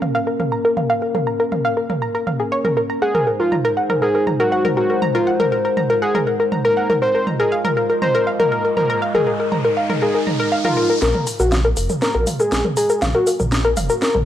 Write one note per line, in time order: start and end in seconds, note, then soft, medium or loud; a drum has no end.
0.00 2.98 A#3 medium
0.00 2.98 C#4 medium
0.00 2.98 A#4 medium
0.00 0.11 F5 medium
0.00 mid tom medium
0.15 0.23 F5 loud
0.27 0.36 A#4 medium
0.40 0.45 A#4 medium
0.40 mid tom medium
0.52 0.61 A#5 medium
0.65 0.73 A#4 loud
0.77 0.86 F5 medium
0.77 mid tom medium
0.90 0.98 F5 loud
1.02 1.11 A#4 medium
1.15 1.20 A#4 medium
1.15 mid tom medium
1.27 1.36 A#5 medium
1.40 1.48 A#4 loud
1.52 1.61 F5 medium
1.52 mid tom medium
1.65 1.73 F5 loud
1.77 1.86 A#4 medium
1.90 1.95 A#4 medium
1.90 mid tom medium
2.02 2.11 A#5 medium
2.15 2.23 A#4 medium
2.27 2.36 F5 medium
2.27 mid tom medium
2.40 2.48 G#4 medium
2.52 2.61 C#5 loud
2.65 2.76 A#4 loud
2.65 mid tom medium
2.77 2.89 A#4 medium
2.90 3.01 A#5 medium
3.02 6.98 G#3 medium
3.02 6.98 D#4 medium
3.02 3.25 G#4 loud
3.02 6.98 C5 medium
3.02 3.11 F#5 medium
3.15 3.23 A#4 medium
3.15 mid tom medium
3.27 3.36 A#4 medium
3.40 3.55 F4 medium
3.40 3.45 A#4 medium
3.52 3.61 A#5 medium
3.52 mid tom medium
3.65 3.73 A#4 loud
3.77 3.86 F#5 medium
3.90 3.98 A#4 loud
3.90 mid tom medium
4.02 4.25 G#4 medium
4.02 4.11 A#4 medium
4.15 4.20 A#4 medium
4.27 4.36 A#5 medium
4.27 mid tom medium
4.40 4.63 F#4 medium
4.40 4.48 A#4 loud
4.52 4.61 F#5 medium
4.65 4.73 A#4 loud
4.65 mid tom medium
4.77 5.00 F#4 medium
4.77 4.86 A#4 medium
4.90 4.95 A#4 medium
5.02 5.11 A#5 medium
5.02 mid tom medium
5.15 5.30 F4 medium
5.15 5.23 A#4 loud
5.27 5.36 F#5 medium
5.40 5.48 A#4 loud
5.40 mid tom medium
5.52 5.61 A#4 medium
5.65 5.70 A#4 medium
5.77 5.86 A#5 medium
5.77 mid tom medium
5.90 5.98 A#4 loud
6.02 6.18 G#4 medium
6.02 6.11 F#5 medium
6.15 6.23 A#4 loud
6.15 mid tom medium
6.27 6.36 A#4 medium
6.40 6.45 A#4 medium
6.52 6.61 A#5 medium
6.52 mid tom medium
6.65 6.88 A#4 loud
6.65 6.73 A#4 loud
6.77 6.86 F#5 medium
6.90 6.98 A#4 loud
6.90 mid tom medium
7.02 10.98 G#3 medium
7.02 9.00 F4 medium
7.02 7.11 A#4 medium
7.02 7.25 C5 loud
7.02 10.98 D#5 medium
7.02 riser medium
7.15 7.20 A#4 medium
7.27 7.36 A#5 medium
7.27 mid tom medium
7.40 7.55 G#4 medium
7.40 7.48 A#4 loud
7.52 7.61 F5 medium
7.65 7.73 A#4 loud
7.65 mid tom loud
7.77 7.86 A#4 medium
7.90 7.95 A#4 medium
8.02 8.25 C5 loud
8.02 8.11 A#5 medium
8.02 mid tom medium
8.15 8.23 A#4 loud
8.27 8.36 F5 medium
8.40 8.63 A#4 medium
8.40 8.48 A#4 loud
8.40 mid tom medium
8.52 8.61 A#4 medium
8.65 8.70 A#4 medium
8.77 9.00 A#4 loud
8.77 8.86 A#5 medium
8.77 mid tom medium
8.90 8.98 A#4 loud
9.02 11.00 D#4 medium
9.02 9.11 F5 medium
9.15 9.30 G#4 medium
9.15 9.23 A#4 loud
9.15 mid tom medium
9.27 9.36 A#4 medium
9.40 9.45 A#4 medium
9.52 9.61 A#5 medium
9.52 mid tom medium
9.65 9.73 A#4 loud
9.77 9.86 F5 medium
9.90 9.98 A#4 loud
9.90 mid tom medium
10.02 10.18 G#4 medium
10.02 10.11 A#4 medium
10.15 10.20 A#4 medium
10.27 10.36 A#5 medium
10.27 mid tom medium
10.40 10.48 A#4 loud
10.52 10.61 F5 medium
10.65 10.88 F4 medium
10.65 10.73 A#4 loud
10.65 mid tom loud
10.77 10.86 A#4 medium
10.90 10.95 A#4 medium
11.02 11.13 A#1 loud
11.02 14.25 A#3 medium
11.02 14.25 C#4 medium
11.02 11.25 A#4 loud
11.02 11.11 A#4 medium
11.02 14.25 C5 medium
11.02 snare soft
11.02 shaker medium
11.15 11.20 A#4 medium
11.15 mid tom medium
11.27 11.36 A#5 medium
11.27 open hi-hat loud
11.27 shaker medium
11.40 11.74 A#1 medium
11.40 11.55 F#4 medium
11.40 11.48 A#4 loud
11.40 shaker medium
11.52 11.61 F5 medium
11.52 snare soft
11.52 mid tom medium
11.52 shaker medium
11.65 11.73 A#4 loud
11.77 11.88 F1 loud
11.77 11.86 A#4 medium
11.77 open hi-hat loud
11.77 shaker medium
11.90 11.95 A#4 medium
11.90 mid tom medium
11.90 shaker medium
12.02 12.25 A#4 medium
12.02 12.11 A#5 medium
12.02 snare soft
12.02 shaker medium
12.15 12.25 A#1 medium
12.15 12.23 A#4 loud
12.27 12.36 F5 medium
12.27 mid tom medium
12.27 open hi-hat loud
12.27 shaker medium
12.40 12.63 G#4 medium
12.40 12.48 A#4 loud
12.40 shaker medium
12.52 12.63 A#1 medium
12.52 12.61 A#4 medium
12.52 snare medium
12.52 shaker medium
12.65 12.70 A#4 medium
12.65 mid tom medium
12.77 13.00 G#4 loud
12.77 12.86 A#5 medium
12.77 open hi-hat loud
12.77 shaker medium
12.90 12.98 A#4 loud
12.90 shaker medium
13.02 13.13 A#1 medium
13.02 13.11 F5 medium
13.02 snare medium
13.02 mid tom medium
13.02 shaker medium
13.15 13.30 F#4 medium
13.15 13.23 A#4 loud
13.27 13.36 A#4 medium
13.27 open hi-hat loud
13.27 shaker medium
13.40 13.74 A#1 medium
13.40 13.45 A#4 medium
13.40 mid tom medium
13.40 shaker medium
13.52 13.61 A#5 medium
13.52 snare medium
13.52 shaker medium
13.65 13.73 A#4 loud
13.77 13.88 F1 loud
13.77 13.86 F5 medium
13.77 mid tom medium
13.77 open hi-hat loud
13.77 shaker medium
13.90 13.98 A#4 loud
13.90 shaker medium
14.02 14.18 A#4 medium
14.02 14.11 A#4 medium
14.02 snare medium
14.02 shaker medium
14.15 14.25 A#1 loud
14.15 14.20 A#4 medium
14.15 mid tom medium